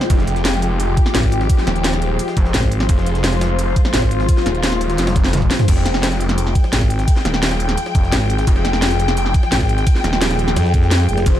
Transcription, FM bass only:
1.15 1.48 G#1 loud
2.54 2.88 G#1 loud
3.94 4.27 G#1 loud
6.73 7.06 G#1 loud
8.12 8.46 G#1 loud
9.52 9.85 G#1 loud
10.57 11.07 F2 loud
11.09 11.25 F1 loud

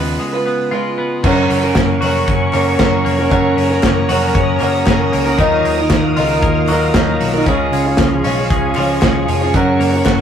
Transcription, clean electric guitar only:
0.00 1.24 C#3 medium
0.00 0.18 G#3 medium
0.00 0.45 B3 medium
0.00 0.70 F4 medium
0.20 1.29 G#3 medium
0.46 0.97 B3 medium
0.71 1.29 F4 medium
0.98 1.29 B3 medium
1.24 3.30 F#2 medium
1.50 2.26 C#4 medium
1.75 2.53 A#3 medium
2.01 4.08 F#4 medium
2.27 2.78 C#4 medium
2.53 3.04 A#3 medium
2.79 3.56 C#4 medium
3.05 3.83 A#3 medium
3.31 5.39 F#2 medium
3.57 4.33 C#4 medium
3.83 4.60 A#3 medium
4.09 6.19 F#4 medium
4.34 4.85 C#4 medium
4.60 5.12 A#3 medium
4.87 5.44 C#4 medium
5.12 5.64 A#3 medium
5.38 7.46 D#3 medium
5.64 6.41 A#3 medium
5.90 6.67 F#3 medium
6.16 8.24 F4 medium
6.42 6.93 A#3 medium
6.68 7.19 F#3 medium
6.94 7.51 A#3 medium
7.20 7.52 F#3 medium
7.46 9.54 C#3 medium
7.73 8.49 G#3 medium
7.98 8.75 F3 medium
8.24 10.21 C#4 medium
8.50 9.01 G#3 medium
8.76 9.27 F3 medium
9.02 9.59 G#3 medium
9.28 9.60 F3 medium
9.54 10.21 F#2 medium
9.80 10.21 A#3 medium
10.06 10.21 F#3 medium

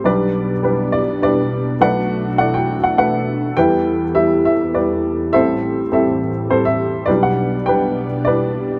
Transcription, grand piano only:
0.04 1.76 B1 medium
0.04 1.76 B2 medium
0.04 0.51 G3 medium
0.04 0.52 D4 medium
0.04 0.52 B4 medium
0.04 0.91 D5 medium
0.63 1.00 G3 medium
0.63 1.01 D4 medium
0.63 1.01 B4 medium
0.92 1.19 D5 medium
1.22 1.80 G3 medium
1.22 1.80 D4 medium
1.22 1.80 B4 medium
1.22 1.82 D5 medium
1.81 3.52 B1 medium
1.81 3.52 B2 medium
1.81 2.27 A3 medium
1.81 2.27 D4 medium
1.81 2.27 B4 medium
1.81 2.39 D5 medium
1.81 2.37 F#5 loud
2.38 2.76 A3 medium
2.38 2.76 D4 medium
2.38 2.77 D5 medium
2.38 2.53 F#5 medium
2.54 2.84 G5 medium
2.84 2.97 F#5 medium
2.98 3.56 A3 medium
2.98 3.56 D4 medium
2.98 3.57 B4 medium
2.98 3.58 F#5 medium
3.57 5.29 E2 medium
3.57 5.30 E3 medium
3.57 4.03 G3 medium
3.57 4.04 E4 medium
3.57 4.04 B4 medium
3.57 4.17 G5 medium
4.15 4.52 G3 medium
4.15 4.52 E4 medium
4.15 4.53 G4 medium
4.15 4.44 E5 medium
4.45 4.75 E5 medium
4.74 5.32 G3 medium
4.74 5.33 E4 soft
4.74 5.33 B4 medium
4.74 5.35 D5 medium
5.33 7.06 A1 medium
5.33 7.06 A2 medium
5.33 5.80 G3 medium
5.33 5.81 C4 medium
5.33 5.81 A4 medium
5.33 6.18 C5 medium
5.33 5.88 E5 medium
5.92 6.29 G3 medium
5.92 6.29 C4 medium
5.92 6.30 A4 medium
5.92 6.53 E5 medium
6.50 7.07 G3 medium
6.50 7.09 C4 medium
6.50 7.09 A4 medium
6.50 6.64 C5 medium
6.65 7.06 E5 medium
7.06 8.79 B1 medium
7.06 8.79 B2 medium
7.06 7.56 G3 medium
7.06 7.67 B4 medium
7.06 7.22 D5 medium
7.10 7.56 D4 medium
7.23 7.68 F#5 medium
7.66 8.05 G3 medium
7.66 8.05 D4 medium
7.66 8.05 B4 medium
7.66 8.27 G5 medium
8.25 8.79 G3 medium
8.25 8.79 D4 medium
8.25 8.79 B4 medium
8.25 8.79 D5 medium

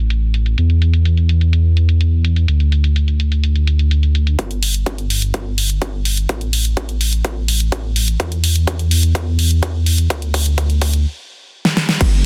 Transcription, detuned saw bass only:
0.00 0.56 A1 medium
0.58 2.46 E2 medium
2.48 4.36 D2 medium
4.39 6.27 G1 medium
6.29 8.17 A1 medium
8.20 10.08 E2 medium
10.10 11.06 D2 medium
12.01 12.26 G1 medium

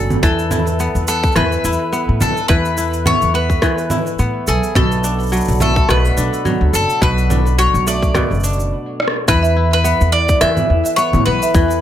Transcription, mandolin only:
0.23 1.07 A4 medium
1.08 1.36 A4 medium
1.36 2.17 B4 medium
2.22 2.48 A4 medium
2.48 3.06 B4 loud
3.07 3.34 C#5 loud
3.35 4.15 B4 medium
4.48 4.76 G#4 medium
4.76 5.61 A4 medium
5.62 5.90 A4 medium
5.90 6.70 B4 medium
6.75 7.02 A4 medium
7.03 7.58 B4 loud
7.59 7.87 C#5 loud
7.88 8.68 D5 medium
9.28 9.72 B4 loud
9.73 10.12 B4 medium
10.12 10.39 D5 loud
10.41 10.96 E5 loud
10.96 11.25 C#5 loud
11.26 11.81 B4 loud

